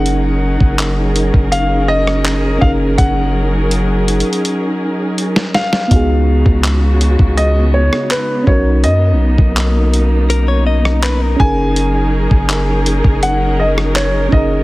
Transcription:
<<
  \new Staff \with { instrumentName = "Grand piano" } { \time 4/4 \key fis \major \tempo 4 = 82 fis''2 eis''8 dis''4 eis''8 | fis''2. r8 eis''8~ | eis''2 dis''8 cis''8 b'8 cis''8 | dis''2 r4. gis''8~ |
gis''2 fis''8 dis''8 cis''8 dis''8 | }
  \new Staff \with { instrumentName = "Clean electric guitar" } { \time 4/4 \key fis \major r1 | r1 | r1 | r2 ais'16 cis''16 dis''8 b'16 ais'8 r16 |
r1 | }
  \new Staff \with { instrumentName = "FM electric piano" } { \time 4/4 \key fis \major <cis' dis' gis' ais'>2.~ <cis' dis' gis' ais'>8 <cis' dis' gis' ais'>8~ | <cis' dis' gis' ais'>2.~ <cis' dis' gis' ais'>8 r8 | <b dis' fis' gis'>2.~ <b dis' fis' gis'>8 <cis' dis' fis' ais'>8~ | <cis' dis' fis' ais'>2.~ <cis' dis' fis' ais'>8 <cis' dis' gis' ais'>8~ |
<cis' dis' gis' ais'>2.~ <cis' dis' gis' ais'>8 <cis' dis' gis' ais'>8 | }
  \new Staff \with { instrumentName = "String section" } { \time 4/4 \key fis \major << { <fis cis' dis' ais'>1~ | <fis cis' dis' ais'>1 | <cis gis b fis'>2.~ <cis gis b fis'>8 ais8~ | ais2.~ ais8 <fis cis' ais'>8~ |
<fis cis' ais'>1 | } \\ { gis'1~ | gis'1 | dis'1~ | dis'2.~ dis'8 gis'8~ |
gis'2.~ gis'8 fis'8 | } >> }
  \new Staff \with { instrumentName = "808-style bass" } { \clef bass \time 4/4 \key fis \major fis,,8. fis,,4 fis,,4.~ fis,,16 fis,,8 | fis,,4.~ fis,,16 r2 r16 | cis,8. cis,4 cis,4 r8. b,,8 | fis,16. b,,16. b,,2~ b,,8. fis,,8~ |
fis,,8. fis,,4 fis,,4.~ fis,,16 fis,,8 | }
  \new DrumStaff \with { instrumentName = "Drums" } \drummode { \time 4/4 hh8. bd16 <hc hh>8 hh16 bd16 hh8. ss16 <hc hh>8 bd8 | <hh bd>4 \tuplet 3/2 { hh16 r16 r16 hh16 hh16 hh16 } hh4 hh16 sn16 sn16 sn16 | <hh bd>8. bd16 <hc hh>8 hh16 bd16 hh8. ss16 <hc hh>8 bd8 | hh8. bd16 <hc hh>8 hh8 hh8. ss16 <hc hh>8 bd8 |
hh8. bd16 <hc hh>8 hh16 bd16 hh8. ss16 <hc hh>8 bd8 | }
>>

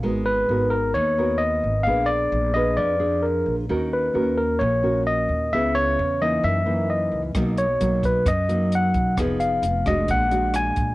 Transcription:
<<
  \new Staff \with { instrumentName = "Tine electric piano" } { \time 4/4 \key gis \minor \tempo 4 = 131 r8 b'4 ais'8 cis''4 dis''4 | eis''8 d''4 dis''8 d''4 ais'8. r16 | r8 b'4 ais'8 cis''4 dis''4 | e''8 cis''4 dis''8 e''4 dis''8. r16 |
r8 cis''4 b'8 dis''4 fis''4 | r8 f''4 ees''8 fis''4 gis''4 | }
  \new Staff \with { instrumentName = "Nylon-string guitar" } { \time 4/4 \key gis \minor << { <b fis' ais'>4 <b fis' ais'>4 r8 <b fis' ais'>4. | <d' gis' b'>4. <d' gis' b'>4 <d' gis'>4. | <cis' fis' ais'>4 <cis' fis' ais'>4 r8 <cis' fis' ais'>4. | <b e' gis'>4 r8 <e ais dis'>4 <e ais dis'>4. |
<fis ais dis'>8 r8 <fis ais dis'>4 r8 <fis ais dis'>4. | <ces' ees' aes'>4 r8 <aes d' fis'>4 <gis d' fis'>4. | } \\ { gis2 dis2 | ais2 eis2 | dis2 ais,2 | cis2 fis,2 |
b,2 fis,2 | f2 ais,2 | } >> }
  \new Staff \with { instrumentName = "Upright bass" } { \clef bass \time 4/4 \key gis \minor gis,,4 gis,,4 dis,4. gis,,8 | ais,,4 ais,,4 eis,4. ais,,8 | dis,4 dis,4 ais,,4. dis,8 | cis,4 e,4 fis,4. cis,8 |
b,,4 b,,4 fis,4. b,,8 | f,,4 f,,4 ais,,4. ais,,8 | }
  \new DrumStaff \with { instrumentName = "Drums" } \drummode { \time 4/4 r4 r4 r4 r4 | r4 r4 r4 r4 | r4 r4 r4 r4 | r4 r4 r4 r4 |
<hh bd ss>8 hh8 hh8 <hh bd>8 <hh bd ss>8 hh8 hh8 <hh bd>8 | <hh bd ss>8 hh8 hh8 <hh bd ss>8 <hh bd>8 hh8 <hh ss>8 <hh bd>8 | }
>>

